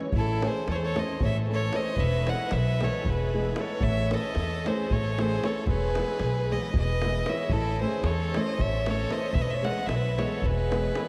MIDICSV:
0, 0, Header, 1, 6, 480
1, 0, Start_track
1, 0, Tempo, 527704
1, 106, Time_signature, 7, 3, 24, 8
1, 10081, End_track
2, 0, Start_track
2, 0, Title_t, "Fiddle"
2, 0, Program_c, 0, 110
2, 151, Note_on_c, 0, 69, 86
2, 433, Note_on_c, 0, 72, 85
2, 447, Note_off_c, 0, 69, 0
2, 631, Note_off_c, 0, 72, 0
2, 646, Note_on_c, 0, 73, 80
2, 674, Note_on_c, 0, 72, 71
2, 687, Note_off_c, 0, 73, 0
2, 770, Note_on_c, 0, 73, 92
2, 783, Note_off_c, 0, 72, 0
2, 900, Note_on_c, 0, 75, 82
2, 914, Note_off_c, 0, 73, 0
2, 1113, Note_off_c, 0, 75, 0
2, 1136, Note_on_c, 0, 76, 95
2, 1241, Note_off_c, 0, 76, 0
2, 1400, Note_on_c, 0, 73, 99
2, 1594, Note_on_c, 0, 75, 82
2, 1608, Note_off_c, 0, 73, 0
2, 1819, Note_on_c, 0, 76, 100
2, 1832, Note_off_c, 0, 75, 0
2, 2086, Note_on_c, 0, 78, 89
2, 2099, Note_off_c, 0, 76, 0
2, 2297, Note_on_c, 0, 76, 97
2, 2310, Note_off_c, 0, 78, 0
2, 2583, Note_on_c, 0, 73, 85
2, 2596, Note_off_c, 0, 76, 0
2, 2811, Note_on_c, 0, 71, 79
2, 2824, Note_off_c, 0, 73, 0
2, 3277, Note_on_c, 0, 73, 84
2, 3290, Note_off_c, 0, 71, 0
2, 3485, Note_on_c, 0, 76, 112
2, 3499, Note_off_c, 0, 73, 0
2, 3756, Note_on_c, 0, 75, 96
2, 3769, Note_off_c, 0, 76, 0
2, 4249, Note_on_c, 0, 72, 78
2, 4263, Note_off_c, 0, 75, 0
2, 4479, Note_on_c, 0, 73, 91
2, 4493, Note_off_c, 0, 72, 0
2, 4734, Note_on_c, 0, 72, 93
2, 4748, Note_off_c, 0, 73, 0
2, 4951, Note_on_c, 0, 73, 78
2, 4965, Note_off_c, 0, 72, 0
2, 5153, Note_off_c, 0, 73, 0
2, 5159, Note_on_c, 0, 71, 100
2, 5932, Note_on_c, 0, 75, 80
2, 5945, Note_off_c, 0, 71, 0
2, 6146, Note_off_c, 0, 75, 0
2, 6179, Note_on_c, 0, 75, 99
2, 6632, Note_on_c, 0, 76, 82
2, 6645, Note_off_c, 0, 75, 0
2, 6834, Note_on_c, 0, 69, 100
2, 6848, Note_off_c, 0, 76, 0
2, 7095, Note_off_c, 0, 69, 0
2, 7100, Note_on_c, 0, 72, 83
2, 7336, Note_on_c, 0, 73, 75
2, 7350, Note_off_c, 0, 72, 0
2, 7612, Note_on_c, 0, 75, 84
2, 7626, Note_off_c, 0, 73, 0
2, 7827, Note_on_c, 0, 76, 92
2, 7841, Note_off_c, 0, 75, 0
2, 8092, Note_on_c, 0, 73, 80
2, 8106, Note_off_c, 0, 76, 0
2, 8295, Note_on_c, 0, 75, 82
2, 8308, Note_off_c, 0, 73, 0
2, 8497, Note_on_c, 0, 76, 108
2, 8510, Note_off_c, 0, 75, 0
2, 8564, Note_on_c, 0, 75, 83
2, 8577, Note_off_c, 0, 76, 0
2, 8644, Note_on_c, 0, 76, 89
2, 8658, Note_off_c, 0, 75, 0
2, 8770, Note_on_c, 0, 78, 82
2, 8784, Note_off_c, 0, 76, 0
2, 8974, Note_on_c, 0, 76, 84
2, 8988, Note_off_c, 0, 78, 0
2, 9257, Note_on_c, 0, 73, 74
2, 9270, Note_off_c, 0, 76, 0
2, 9508, Note_on_c, 0, 71, 90
2, 9522, Note_off_c, 0, 73, 0
2, 10081, Note_off_c, 0, 71, 0
2, 10081, End_track
3, 0, Start_track
3, 0, Title_t, "Violin"
3, 0, Program_c, 1, 40
3, 127, Note_on_c, 1, 64, 80
3, 408, Note_on_c, 1, 68, 73
3, 422, Note_off_c, 1, 64, 0
3, 616, Note_off_c, 1, 68, 0
3, 622, Note_on_c, 1, 69, 59
3, 668, Note_on_c, 1, 68, 54
3, 681, Note_off_c, 1, 69, 0
3, 758, Note_on_c, 1, 69, 77
3, 772, Note_off_c, 1, 68, 0
3, 905, Note_on_c, 1, 72, 68
3, 918, Note_off_c, 1, 69, 0
3, 1104, Note_off_c, 1, 72, 0
3, 1110, Note_on_c, 1, 73, 69
3, 1220, Note_off_c, 1, 73, 0
3, 1383, Note_on_c, 1, 69, 71
3, 1606, Note_on_c, 1, 72, 84
3, 1620, Note_off_c, 1, 69, 0
3, 1785, Note_on_c, 1, 71, 99
3, 1799, Note_off_c, 1, 72, 0
3, 2079, Note_on_c, 1, 75, 80
3, 2092, Note_off_c, 1, 71, 0
3, 2302, Note_on_c, 1, 71, 71
3, 2315, Note_off_c, 1, 75, 0
3, 2578, Note_on_c, 1, 69, 67
3, 2592, Note_off_c, 1, 71, 0
3, 2790, Note_on_c, 1, 68, 62
3, 2804, Note_off_c, 1, 69, 0
3, 3273, Note_on_c, 1, 69, 71
3, 3287, Note_off_c, 1, 68, 0
3, 3482, Note_on_c, 1, 73, 89
3, 3496, Note_off_c, 1, 69, 0
3, 3760, Note_on_c, 1, 69, 78
3, 3773, Note_off_c, 1, 73, 0
3, 4273, Note_on_c, 1, 68, 68
3, 4287, Note_off_c, 1, 69, 0
3, 4496, Note_on_c, 1, 69, 75
3, 4509, Note_off_c, 1, 68, 0
3, 4725, Note_on_c, 1, 68, 79
3, 4738, Note_off_c, 1, 69, 0
3, 4968, Note_on_c, 1, 69, 75
3, 4981, Note_off_c, 1, 68, 0
3, 5164, Note_off_c, 1, 69, 0
3, 5187, Note_on_c, 1, 68, 75
3, 5937, Note_on_c, 1, 71, 68
3, 5950, Note_off_c, 1, 68, 0
3, 6132, Note_off_c, 1, 71, 0
3, 6137, Note_on_c, 1, 71, 66
3, 6624, Note_on_c, 1, 73, 67
3, 6638, Note_off_c, 1, 71, 0
3, 6852, Note_on_c, 1, 64, 75
3, 6865, Note_off_c, 1, 73, 0
3, 7108, Note_off_c, 1, 64, 0
3, 7135, Note_on_c, 1, 68, 66
3, 7352, Note_on_c, 1, 69, 73
3, 7366, Note_off_c, 1, 68, 0
3, 7623, Note_on_c, 1, 72, 74
3, 7636, Note_off_c, 1, 69, 0
3, 7842, Note_on_c, 1, 73, 73
3, 7856, Note_off_c, 1, 72, 0
3, 8090, Note_on_c, 1, 69, 80
3, 8103, Note_off_c, 1, 73, 0
3, 8308, Note_on_c, 1, 72, 74
3, 8321, Note_off_c, 1, 69, 0
3, 8516, Note_on_c, 1, 71, 86
3, 8529, Note_off_c, 1, 72, 0
3, 8593, Note_off_c, 1, 71, 0
3, 8593, Note_on_c, 1, 71, 70
3, 8677, Note_on_c, 1, 73, 84
3, 8690, Note_off_c, 1, 71, 0
3, 8822, Note_on_c, 1, 75, 74
3, 8835, Note_off_c, 1, 73, 0
3, 9048, Note_on_c, 1, 71, 70
3, 9061, Note_off_c, 1, 75, 0
3, 9330, Note_on_c, 1, 69, 63
3, 9343, Note_off_c, 1, 71, 0
3, 9533, Note_on_c, 1, 68, 67
3, 9547, Note_off_c, 1, 69, 0
3, 10081, Note_off_c, 1, 68, 0
3, 10081, End_track
4, 0, Start_track
4, 0, Title_t, "Nylon-string guitar"
4, 0, Program_c, 2, 24
4, 371, Note_on_c, 2, 52, 64
4, 378, Note_on_c, 2, 57, 53
4, 382, Note_on_c, 2, 61, 59
4, 385, Note_on_c, 2, 64, 61
4, 551, Note_off_c, 2, 52, 0
4, 555, Note_off_c, 2, 57, 0
4, 555, Note_off_c, 2, 61, 0
4, 558, Note_off_c, 2, 64, 0
4, 860, Note_on_c, 2, 52, 54
4, 861, Note_on_c, 2, 57, 52
4, 867, Note_on_c, 2, 61, 54
4, 875, Note_on_c, 2, 64, 66
4, 1044, Note_off_c, 2, 52, 0
4, 1044, Note_off_c, 2, 57, 0
4, 1047, Note_off_c, 2, 61, 0
4, 1051, Note_off_c, 2, 64, 0
4, 1337, Note_on_c, 2, 52, 54
4, 1342, Note_on_c, 2, 57, 48
4, 1351, Note_on_c, 2, 61, 49
4, 1357, Note_on_c, 2, 64, 61
4, 1515, Note_off_c, 2, 52, 0
4, 1516, Note_off_c, 2, 57, 0
4, 1521, Note_off_c, 2, 61, 0
4, 1524, Note_off_c, 2, 64, 0
4, 1557, Note_on_c, 2, 52, 57
4, 1563, Note_on_c, 2, 57, 49
4, 1566, Note_on_c, 2, 61, 55
4, 1571, Note_on_c, 2, 64, 54
4, 1733, Note_off_c, 2, 52, 0
4, 1737, Note_off_c, 2, 57, 0
4, 1738, Note_off_c, 2, 61, 0
4, 1741, Note_off_c, 2, 64, 0
4, 2054, Note_on_c, 2, 56, 51
4, 2058, Note_on_c, 2, 52, 49
4, 2066, Note_on_c, 2, 59, 52
4, 2071, Note_on_c, 2, 64, 65
4, 2232, Note_off_c, 2, 56, 0
4, 2234, Note_off_c, 2, 52, 0
4, 2238, Note_off_c, 2, 59, 0
4, 2241, Note_off_c, 2, 64, 0
4, 2550, Note_on_c, 2, 52, 69
4, 2558, Note_on_c, 2, 56, 64
4, 2562, Note_on_c, 2, 59, 47
4, 2567, Note_on_c, 2, 64, 66
4, 2728, Note_off_c, 2, 52, 0
4, 2732, Note_off_c, 2, 56, 0
4, 2735, Note_off_c, 2, 59, 0
4, 2735, Note_off_c, 2, 64, 0
4, 3030, Note_on_c, 2, 52, 61
4, 3034, Note_on_c, 2, 56, 52
4, 3036, Note_on_c, 2, 59, 54
4, 3042, Note_on_c, 2, 64, 62
4, 3201, Note_off_c, 2, 52, 0
4, 3201, Note_off_c, 2, 56, 0
4, 3204, Note_off_c, 2, 59, 0
4, 3206, Note_off_c, 2, 64, 0
4, 3248, Note_on_c, 2, 52, 62
4, 3254, Note_on_c, 2, 56, 56
4, 3256, Note_on_c, 2, 59, 52
4, 3260, Note_on_c, 2, 64, 58
4, 3419, Note_off_c, 2, 52, 0
4, 3420, Note_off_c, 2, 56, 0
4, 3422, Note_off_c, 2, 59, 0
4, 3424, Note_off_c, 2, 64, 0
4, 3738, Note_on_c, 2, 52, 63
4, 3743, Note_on_c, 2, 57, 49
4, 3745, Note_on_c, 2, 61, 54
4, 3750, Note_on_c, 2, 64, 76
4, 3914, Note_off_c, 2, 52, 0
4, 3915, Note_off_c, 2, 57, 0
4, 3917, Note_off_c, 2, 61, 0
4, 3919, Note_off_c, 2, 64, 0
4, 4225, Note_on_c, 2, 52, 65
4, 4235, Note_on_c, 2, 57, 61
4, 4239, Note_on_c, 2, 61, 54
4, 4245, Note_on_c, 2, 64, 67
4, 4405, Note_off_c, 2, 52, 0
4, 4410, Note_off_c, 2, 57, 0
4, 4412, Note_off_c, 2, 61, 0
4, 4415, Note_off_c, 2, 64, 0
4, 4703, Note_on_c, 2, 52, 48
4, 4709, Note_on_c, 2, 57, 43
4, 4712, Note_on_c, 2, 61, 52
4, 4714, Note_on_c, 2, 64, 53
4, 4876, Note_off_c, 2, 52, 0
4, 4879, Note_off_c, 2, 57, 0
4, 4880, Note_off_c, 2, 61, 0
4, 4882, Note_off_c, 2, 64, 0
4, 4929, Note_on_c, 2, 52, 50
4, 4935, Note_on_c, 2, 57, 52
4, 4939, Note_on_c, 2, 61, 51
4, 4945, Note_on_c, 2, 64, 61
4, 5098, Note_off_c, 2, 52, 0
4, 5101, Note_off_c, 2, 57, 0
4, 5103, Note_off_c, 2, 61, 0
4, 5105, Note_off_c, 2, 64, 0
4, 5425, Note_on_c, 2, 52, 54
4, 5430, Note_on_c, 2, 56, 46
4, 5438, Note_on_c, 2, 59, 44
4, 5444, Note_on_c, 2, 64, 66
4, 5596, Note_off_c, 2, 52, 0
4, 5599, Note_off_c, 2, 56, 0
4, 5602, Note_off_c, 2, 59, 0
4, 5605, Note_off_c, 2, 64, 0
4, 5912, Note_on_c, 2, 52, 58
4, 5923, Note_on_c, 2, 56, 55
4, 5924, Note_on_c, 2, 59, 52
4, 5933, Note_on_c, 2, 64, 54
4, 6088, Note_off_c, 2, 52, 0
4, 6093, Note_off_c, 2, 56, 0
4, 6094, Note_off_c, 2, 59, 0
4, 6098, Note_off_c, 2, 64, 0
4, 6388, Note_on_c, 2, 52, 50
4, 6393, Note_on_c, 2, 56, 44
4, 6398, Note_on_c, 2, 59, 45
4, 6404, Note_on_c, 2, 64, 69
4, 6558, Note_off_c, 2, 52, 0
4, 6559, Note_off_c, 2, 56, 0
4, 6563, Note_off_c, 2, 59, 0
4, 6566, Note_off_c, 2, 64, 0
4, 6615, Note_on_c, 2, 52, 57
4, 6618, Note_on_c, 2, 56, 52
4, 6627, Note_on_c, 2, 59, 55
4, 6632, Note_on_c, 2, 64, 66
4, 6780, Note_off_c, 2, 52, 0
4, 6782, Note_off_c, 2, 56, 0
4, 6786, Note_off_c, 2, 59, 0
4, 6789, Note_off_c, 2, 64, 0
4, 7104, Note_on_c, 2, 52, 50
4, 7107, Note_on_c, 2, 57, 60
4, 7112, Note_on_c, 2, 61, 57
4, 7117, Note_on_c, 2, 64, 60
4, 7275, Note_off_c, 2, 52, 0
4, 7277, Note_off_c, 2, 57, 0
4, 7278, Note_off_c, 2, 61, 0
4, 7282, Note_off_c, 2, 64, 0
4, 7586, Note_on_c, 2, 52, 57
4, 7597, Note_on_c, 2, 57, 58
4, 7600, Note_on_c, 2, 61, 57
4, 7606, Note_on_c, 2, 64, 62
4, 7764, Note_off_c, 2, 52, 0
4, 7770, Note_off_c, 2, 57, 0
4, 7772, Note_off_c, 2, 61, 0
4, 7774, Note_off_c, 2, 64, 0
4, 8059, Note_on_c, 2, 52, 50
4, 8062, Note_on_c, 2, 57, 45
4, 8067, Note_on_c, 2, 61, 54
4, 8076, Note_on_c, 2, 64, 52
4, 8233, Note_off_c, 2, 52, 0
4, 8234, Note_off_c, 2, 57, 0
4, 8237, Note_off_c, 2, 61, 0
4, 8242, Note_off_c, 2, 64, 0
4, 8270, Note_on_c, 2, 52, 55
4, 8277, Note_on_c, 2, 57, 55
4, 8284, Note_on_c, 2, 61, 50
4, 8287, Note_on_c, 2, 64, 61
4, 8448, Note_off_c, 2, 52, 0
4, 8451, Note_off_c, 2, 57, 0
4, 8455, Note_off_c, 2, 61, 0
4, 8456, Note_off_c, 2, 64, 0
4, 8751, Note_on_c, 2, 52, 64
4, 8757, Note_on_c, 2, 56, 58
4, 8765, Note_on_c, 2, 59, 52
4, 8771, Note_on_c, 2, 64, 66
4, 8938, Note_off_c, 2, 52, 0
4, 8942, Note_off_c, 2, 56, 0
4, 8945, Note_off_c, 2, 59, 0
4, 8949, Note_off_c, 2, 64, 0
4, 9252, Note_on_c, 2, 52, 62
4, 9259, Note_on_c, 2, 56, 61
4, 9265, Note_on_c, 2, 59, 55
4, 9268, Note_on_c, 2, 64, 58
4, 9437, Note_off_c, 2, 52, 0
4, 9442, Note_off_c, 2, 56, 0
4, 9443, Note_off_c, 2, 59, 0
4, 9445, Note_off_c, 2, 64, 0
4, 9730, Note_on_c, 2, 52, 49
4, 9737, Note_on_c, 2, 56, 55
4, 9743, Note_on_c, 2, 59, 51
4, 9745, Note_on_c, 2, 64, 63
4, 9909, Note_off_c, 2, 52, 0
4, 9913, Note_off_c, 2, 56, 0
4, 9915, Note_off_c, 2, 59, 0
4, 9916, Note_off_c, 2, 64, 0
4, 9962, Note_on_c, 2, 52, 65
4, 9963, Note_on_c, 2, 56, 45
4, 9967, Note_on_c, 2, 59, 54
4, 9975, Note_on_c, 2, 64, 62
4, 10081, Note_off_c, 2, 52, 0
4, 10081, Note_off_c, 2, 56, 0
4, 10081, Note_off_c, 2, 59, 0
4, 10081, Note_off_c, 2, 64, 0
4, 10081, End_track
5, 0, Start_track
5, 0, Title_t, "Upright bass"
5, 0, Program_c, 3, 32
5, 112, Note_on_c, 3, 33, 83
5, 409, Note_off_c, 3, 33, 0
5, 616, Note_on_c, 3, 40, 88
5, 911, Note_off_c, 3, 40, 0
5, 1111, Note_on_c, 3, 33, 85
5, 1519, Note_off_c, 3, 33, 0
5, 1793, Note_on_c, 3, 28, 88
5, 2089, Note_off_c, 3, 28, 0
5, 2291, Note_on_c, 3, 35, 99
5, 2586, Note_off_c, 3, 35, 0
5, 2770, Note_on_c, 3, 28, 85
5, 3185, Note_off_c, 3, 28, 0
5, 3465, Note_on_c, 3, 33, 93
5, 3763, Note_off_c, 3, 33, 0
5, 3964, Note_on_c, 3, 40, 89
5, 4261, Note_off_c, 3, 40, 0
5, 4459, Note_on_c, 3, 33, 89
5, 4870, Note_off_c, 3, 33, 0
5, 5148, Note_on_c, 3, 28, 77
5, 5444, Note_off_c, 3, 28, 0
5, 5638, Note_on_c, 3, 35, 72
5, 5936, Note_off_c, 3, 35, 0
5, 6142, Note_on_c, 3, 28, 81
5, 6552, Note_off_c, 3, 28, 0
5, 6824, Note_on_c, 3, 33, 76
5, 7121, Note_off_c, 3, 33, 0
5, 7308, Note_on_c, 3, 40, 90
5, 7609, Note_off_c, 3, 40, 0
5, 7810, Note_on_c, 3, 33, 91
5, 8224, Note_off_c, 3, 33, 0
5, 8485, Note_on_c, 3, 28, 73
5, 8788, Note_off_c, 3, 28, 0
5, 8979, Note_on_c, 3, 35, 80
5, 9283, Note_off_c, 3, 35, 0
5, 9476, Note_on_c, 3, 28, 83
5, 9894, Note_off_c, 3, 28, 0
5, 10081, End_track
6, 0, Start_track
6, 0, Title_t, "Davul"
6, 4, Note_on_c, 9, 37, 29
6, 95, Note_off_c, 9, 37, 0
6, 111, Note_on_c, 9, 43, 80
6, 202, Note_off_c, 9, 43, 0
6, 386, Note_on_c, 9, 37, 69
6, 477, Note_off_c, 9, 37, 0
6, 616, Note_on_c, 9, 37, 56
6, 707, Note_off_c, 9, 37, 0
6, 873, Note_on_c, 9, 37, 65
6, 964, Note_off_c, 9, 37, 0
6, 1094, Note_on_c, 9, 43, 94
6, 1185, Note_off_c, 9, 43, 0
6, 1235, Note_on_c, 9, 37, 25
6, 1325, Note_off_c, 9, 37, 0
6, 1463, Note_on_c, 9, 37, 22
6, 1554, Note_off_c, 9, 37, 0
6, 1569, Note_on_c, 9, 37, 67
6, 1660, Note_off_c, 9, 37, 0
6, 1785, Note_on_c, 9, 43, 78
6, 1876, Note_off_c, 9, 43, 0
6, 2063, Note_on_c, 9, 37, 65
6, 2154, Note_off_c, 9, 37, 0
6, 2282, Note_on_c, 9, 37, 68
6, 2373, Note_off_c, 9, 37, 0
6, 2553, Note_on_c, 9, 37, 62
6, 2643, Note_off_c, 9, 37, 0
6, 2780, Note_on_c, 9, 43, 79
6, 2871, Note_off_c, 9, 43, 0
6, 2901, Note_on_c, 9, 37, 26
6, 2991, Note_off_c, 9, 37, 0
6, 3137, Note_on_c, 9, 37, 27
6, 3228, Note_off_c, 9, 37, 0
6, 3237, Note_on_c, 9, 37, 71
6, 3328, Note_off_c, 9, 37, 0
6, 3460, Note_on_c, 9, 43, 95
6, 3551, Note_off_c, 9, 43, 0
6, 3738, Note_on_c, 9, 37, 65
6, 3829, Note_off_c, 9, 37, 0
6, 3956, Note_on_c, 9, 37, 59
6, 4047, Note_off_c, 9, 37, 0
6, 4239, Note_on_c, 9, 37, 69
6, 4330, Note_off_c, 9, 37, 0
6, 4461, Note_on_c, 9, 43, 90
6, 4552, Note_off_c, 9, 43, 0
6, 4590, Note_on_c, 9, 37, 27
6, 4681, Note_off_c, 9, 37, 0
6, 4716, Note_on_c, 9, 37, 66
6, 4807, Note_off_c, 9, 37, 0
6, 4832, Note_on_c, 9, 37, 29
6, 4923, Note_off_c, 9, 37, 0
6, 4943, Note_on_c, 9, 37, 65
6, 5034, Note_off_c, 9, 37, 0
6, 5156, Note_on_c, 9, 43, 90
6, 5247, Note_off_c, 9, 43, 0
6, 5295, Note_on_c, 9, 37, 28
6, 5385, Note_off_c, 9, 37, 0
6, 5416, Note_on_c, 9, 37, 66
6, 5507, Note_off_c, 9, 37, 0
6, 5535, Note_on_c, 9, 37, 25
6, 5626, Note_off_c, 9, 37, 0
6, 5635, Note_on_c, 9, 37, 62
6, 5726, Note_off_c, 9, 37, 0
6, 5780, Note_on_c, 9, 37, 27
6, 5871, Note_off_c, 9, 37, 0
6, 6021, Note_on_c, 9, 37, 22
6, 6112, Note_off_c, 9, 37, 0
6, 6127, Note_on_c, 9, 43, 91
6, 6218, Note_off_c, 9, 43, 0
6, 6254, Note_on_c, 9, 37, 23
6, 6345, Note_off_c, 9, 37, 0
6, 6381, Note_on_c, 9, 37, 64
6, 6472, Note_off_c, 9, 37, 0
6, 6603, Note_on_c, 9, 37, 70
6, 6694, Note_off_c, 9, 37, 0
6, 6709, Note_on_c, 9, 37, 31
6, 6800, Note_off_c, 9, 37, 0
6, 6815, Note_on_c, 9, 43, 92
6, 6906, Note_off_c, 9, 43, 0
6, 7312, Note_on_c, 9, 37, 65
6, 7403, Note_off_c, 9, 37, 0
6, 7590, Note_on_c, 9, 37, 66
6, 7680, Note_off_c, 9, 37, 0
6, 7817, Note_on_c, 9, 43, 91
6, 7908, Note_off_c, 9, 43, 0
6, 7939, Note_on_c, 9, 37, 28
6, 8030, Note_off_c, 9, 37, 0
6, 8061, Note_on_c, 9, 37, 69
6, 8152, Note_off_c, 9, 37, 0
6, 8169, Note_on_c, 9, 37, 25
6, 8260, Note_off_c, 9, 37, 0
6, 8281, Note_on_c, 9, 37, 61
6, 8372, Note_off_c, 9, 37, 0
6, 8505, Note_on_c, 9, 43, 104
6, 8596, Note_off_c, 9, 43, 0
6, 8775, Note_on_c, 9, 37, 60
6, 8866, Note_off_c, 9, 37, 0
6, 8995, Note_on_c, 9, 37, 70
6, 9086, Note_off_c, 9, 37, 0
6, 9266, Note_on_c, 9, 37, 57
6, 9357, Note_off_c, 9, 37, 0
6, 9491, Note_on_c, 9, 43, 86
6, 9582, Note_off_c, 9, 43, 0
6, 9621, Note_on_c, 9, 37, 25
6, 9712, Note_off_c, 9, 37, 0
6, 9749, Note_on_c, 9, 37, 68
6, 9840, Note_off_c, 9, 37, 0
6, 9855, Note_on_c, 9, 37, 28
6, 9946, Note_off_c, 9, 37, 0
6, 9963, Note_on_c, 9, 37, 71
6, 10054, Note_off_c, 9, 37, 0
6, 10081, End_track
0, 0, End_of_file